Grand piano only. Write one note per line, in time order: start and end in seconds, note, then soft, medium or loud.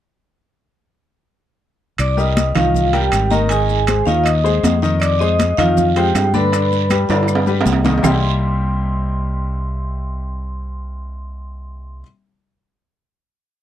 2.17 2.48 G3 medium
2.17 2.49 G4 medium
2.17 2.49 A#4 medium
2.55 2.87 D#3 medium
2.55 2.87 D#4 medium
2.55 2.87 D#5 medium
2.93 3.24 G3 medium
2.93 3.25 G4 medium
2.93 3.25 A#4 medium
3.31 3.47 D#3 medium
3.31 3.47 D#4 medium
3.31 3.47 D#5 medium
3.50 3.81 D#3 medium
3.50 3.82 D#4 medium
3.50 3.82 D#5 medium
3.88 4.04 G#3 medium
3.88 4.04 G#4 medium
3.88 4.04 C5 medium
4.06 4.38 D#3 medium
4.06 4.38 D#4 medium
4.06 4.38 D#5 medium
4.44 4.75 G#3 medium
4.44 4.76 G#4 medium
4.44 4.76 C5 medium
4.83 5.14 D#3 medium
4.83 5.14 D#4 medium
4.83 5.14 D#5 medium
5.21 5.52 G#3 medium
5.21 5.52 G#4 medium
5.21 5.52 C5 medium
5.58 5.89 D#3 medium
5.58 5.89 D#4 medium
5.58 5.90 D#5 medium
5.96 6.27 G#3 medium
5.96 6.28 F4 medium
5.96 6.28 C5 medium
6.34 6.49 D3 medium
6.34 6.50 D4 medium
6.34 6.50 D5 medium
6.52 6.84 D3 medium
6.52 6.84 D4 medium
6.52 6.84 D5 medium
6.90 7.06 G3 medium
6.90 7.06 G4 medium
6.90 7.06 B4 medium
7.10 7.41 D3 medium
7.10 7.41 D4 medium
7.10 7.41 D5 medium
7.47 7.78 G3 medium
7.47 7.78 G4 medium
7.47 7.79 B4 medium
7.84 8.00 D#3 medium
7.84 8.00 D#4 medium
7.84 8.00 D#5 medium
8.03 12.00 C3 medium
8.03 12.01 G3 medium
8.03 12.01 A#3 medium
8.03 12.01 C4 medium
8.03 12.01 D#4 medium
8.03 12.01 G4 medium